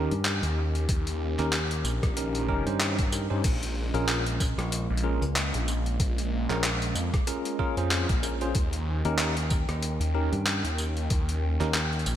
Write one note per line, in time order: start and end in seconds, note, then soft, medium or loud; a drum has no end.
0.00 3.40 D#3 medium
0.00 0.13 C#4 medium
0.00 8.51 C#4 medium
0.00 0.13 D#4 medium
0.00 0.13 G4 medium
0.00 3.40 G4 medium
0.00 0.13 A#4 medium
0.11 0.40 G2 medium
0.11 closed hi-hat soft
0.25 clap loud
0.25 closed hi-hat medium
0.43 0.86 D#2 loud
0.43 closed hi-hat medium
0.75 closed hi-hat soft
0.89 1.36 D#2 medium
0.89 kick loud
0.89 closed hi-hat medium
1.07 closed hi-hat medium
1.39 1.82 D#2 loud
1.39 1.56 C#4 medium
1.39 1.56 D#4 medium
1.39 1.56 G4 medium
1.39 1.56 A#4 loud
1.39 clap soft
1.39 closed hi-hat soft
1.53 clap loud
1.53 closed hi-hat medium
1.71 closed hi-hat medium
1.84 2.00 A#1 loud
1.84 tambourine medium
2.03 2.64 A#1 loud
2.03 kick loud
2.03 cross-stick medium
2.03 closed hi-hat soft
2.17 2.46 C#4 medium
2.17 2.46 D#4 medium
2.17 2.46 G4 medium
2.17 2.46 A#4 medium
2.17 closed hi-hat medium
2.35 closed hi-hat medium
2.49 2.64 C#4 loud
2.49 2.64 D#4 medium
2.49 2.64 G4 medium
2.49 2.64 A#4 loud
2.49 kick medium
2.66 3.27 G2 loud
2.66 2.96 C#4 medium
2.66 2.96 D#4 medium
2.66 2.96 G4 medium
2.66 2.96 C5 medium
2.66 closed hi-hat soft
2.80 cross-stick soft
2.80 clap loud
2.80 closed hi-hat medium
2.99 kick loud
2.99 closed hi-hat medium
3.12 3.26 C#4 medium
3.12 3.26 D#4 medium
3.12 3.26 G4 medium
3.12 3.26 A#4 medium
3.12 tambourine medium
3.30 3.42 G2 loud
3.30 3.42 C#4 medium
3.30 3.42 D#4 medium
3.30 3.42 G4 medium
3.30 3.42 C5 medium
3.44 3.92 A#1 medium
3.44 8.51 G#3 medium
3.44 8.51 A#3 medium
3.44 kick loud
3.44 closed hi-hat medium
3.44 crash medium
3.63 closed hi-hat medium
3.94 4.55 A#1 loud
3.94 4.24 C#4 loud
3.94 4.23 F4 medium
3.94 4.23 G#4 medium
3.94 4.24 A#4 loud
3.94 closed hi-hat soft
4.08 clap loud
4.08 closed hi-hat medium
4.26 closed hi-hat medium
4.40 kick loud
4.40 tambourine medium
4.58 4.87 A#1 medium
4.58 cross-stick medium
4.58 closed hi-hat soft
4.72 closed hi-hat medium
4.90 5.19 A#1 loud
4.97 closed hi-hat medium
5.03 5.24 C#4 medium
5.03 5.24 F4 medium
5.03 5.24 G#4 medium
5.03 5.24 A#4 medium
5.22 5.51 C#2 medium
5.22 closed hi-hat soft
5.36 clap loud
5.36 closed hi-hat medium
5.54 5.98 A#1 loud
5.54 closed hi-hat medium
5.68 tambourine medium
5.86 closed hi-hat soft
6.00 6.47 A#1 medium
6.00 kick loud
6.00 closed hi-hat medium
6.18 closed hi-hat medium
6.49 6.93 A#1 loud
6.49 6.66 C#4 medium
6.49 6.66 F4 medium
6.49 6.66 G#4 medium
6.49 6.66 A#4 loud
6.49 clap soft
6.49 closed hi-hat soft
6.64 clap loud
6.64 closed hi-hat medium
6.82 closed hi-hat medium
6.95 7.10 F2 loud
6.95 tambourine medium
7.14 kick loud
7.14 cross-stick medium
7.14 closed hi-hat soft
7.27 7.57 C#4 medium
7.27 7.56 F4 medium
7.27 7.56 G#4 medium
7.27 7.56 A#4 medium
7.27 closed hi-hat medium
7.45 closed hi-hat medium
7.59 7.75 C#4 loud
7.59 7.75 F4 medium
7.59 7.75 G#4 medium
7.59 7.75 A#4 loud
7.59 kick medium
7.77 8.06 F2 loud
7.77 8.07 C#4 medium
7.77 8.07 F4 medium
7.77 8.07 G#4 medium
7.77 8.07 C5 medium
7.77 closed hi-hat soft
7.91 cross-stick soft
7.91 clap loud
7.91 closed hi-hat medium
8.09 8.53 A#1 loud
8.09 kick loud
8.09 closed hi-hat medium
8.23 8.37 C#4 medium
8.23 8.37 F4 medium
8.23 8.37 G#4 medium
8.23 8.37 A#4 medium
8.23 tambourine medium
8.41 8.53 C#4 medium
8.41 8.53 F4 medium
8.41 8.53 G#4 medium
8.41 8.53 C5 loud
8.41 closed hi-hat soft
8.55 9.02 D#2 medium
8.55 12.16 D#3 medium
8.55 12.16 C#4 medium
8.55 12.16 G5 medium
8.55 kick loud
8.55 closed hi-hat medium
8.73 closed hi-hat medium
9.05 9.66 D#2 loud
9.05 9.34 C#4 medium
9.05 9.34 D#4 medium
9.05 9.34 G4 medium
9.05 9.34 A#4 loud
9.05 closed hi-hat soft
9.18 clap loud
9.18 closed hi-hat medium
9.37 closed hi-hat medium
9.50 kick loud
9.50 tambourine medium
9.69 9.98 D#2 loud
9.69 cross-stick medium
9.69 closed hi-hat soft
9.83 closed hi-hat medium
10.00 10.29 D#2 loud
10.00 closed hi-hat medium
10.15 10.35 C#4 medium
10.15 10.35 D#4 medium
10.15 10.35 G4 medium
10.15 10.35 A#4 loud
10.32 10.62 G2 loud
10.32 closed hi-hat soft
10.46 clap loud
10.46 closed hi-hat medium
10.64 11.08 D#2 loud
10.64 closed hi-hat medium
10.78 tambourine medium
10.97 closed hi-hat soft
11.10 11.57 D#2 loud
11.10 kick loud
11.10 closed hi-hat medium
11.29 closed hi-hat medium
11.60 12.04 D#2 loud
11.60 11.77 C#4 medium
11.60 11.77 D#4 medium
11.60 11.77 G4 medium
11.60 11.77 A#4 medium
11.60 clap soft
11.60 closed hi-hat soft
11.74 clap loud
11.74 closed hi-hat medium
11.93 closed hi-hat soft
11.99 closed hi-hat soft
12.06 12.16 A#1 loud
12.06 closed hi-hat soft
12.06 tambourine medium